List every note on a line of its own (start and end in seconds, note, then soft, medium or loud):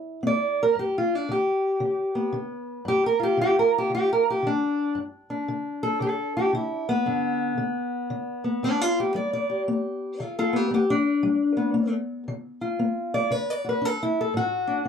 0.00 0.20 G3 medium
0.00 0.74 E4 soft
0.23 0.72 C4 medium
0.27 0.60 D5 loud
0.63 0.78 A#4 medium
0.75 1.25 G2 medium
0.75 0.95 G4 medium
0.98 1.15 F4 medium
1.15 1.31 D4 medium
1.29 1.78 D3 medium
1.29 2.35 G4 medium
1.80 2.29 D3 medium
2.15 3.09 B3 soft
2.33 2.82 D3 medium
2.85 3.34 G2 medium
2.85 3.05 G4 loud
3.06 3.23 A#4 medium
3.20 4.44 F4 medium
3.20 3.40 G4 medium
3.37 3.87 D3 medium
3.41 3.58 G4 loud
3.59 3.75 A#4 medium
3.78 3.94 G4 medium
3.90 4.39 D3 medium
3.95 4.10 G4 loud
4.13 4.28 A#4 medium
4.30 4.46 G4 medium
4.43 4.92 D3 medium
4.47 4.98 D4 medium
4.95 5.44 G2 medium
5.30 6.88 D4 soft
5.48 5.97 D3 medium
5.83 6.01 A4 medium
6.00 6.49 D3 medium
6.00 6.35 A4 medium
6.37 6.54 G4 medium
6.53 7.02 D3 medium
6.53 6.88 E4 medium
6.89 8.43 B3 medium
7.06 7.54 G2 medium
7.06 7.57 D3 soft
7.58 8.06 D3 medium
8.10 8.59 D3 medium
8.44 9.68 B3 medium
8.63 9.11 D3 medium
8.63 8.81 D4 medium
8.81 8.98 F4 medium
9.00 9.15 G4 medium
9.15 9.63 G3 medium
9.15 9.32 D5 medium
9.33 9.61 D5 medium
9.50 10.21 G4 soft
9.68 10.16 B3 medium
10.20 10.68 D3 medium
10.20 10.37 F4 loud
10.20 10.37 A4 loud
10.39 10.55 F4 medium
10.39 10.56 A4 medium
10.53 10.70 B3 medium
10.53 10.72 G4 medium
10.71 10.73 B3 medium
10.71 10.78 B3 medium
10.71 10.90 G4 medium
10.90 11.93 D4 medium
11.23 11.71 G3 medium
11.57 11.73 B3 medium
11.74 12.23 B3 medium
12.28 12.76 D3 medium
12.61 13.29 F4 medium
12.79 13.28 B3 medium
13.14 13.31 D5 loud
13.31 13.79 D3 medium
13.31 13.50 B4 medium
13.50 13.67 D5 medium
13.64 13.85 F#4 soft
13.69 13.85 B4 medium
13.82 14.30 D4 medium
13.82 14.01 A4 medium
14.03 14.19 E4 medium
14.21 14.37 A4 medium
14.34 14.83 A2 medium
14.34 14.88 F#4 loud
14.67 14.84 D4 medium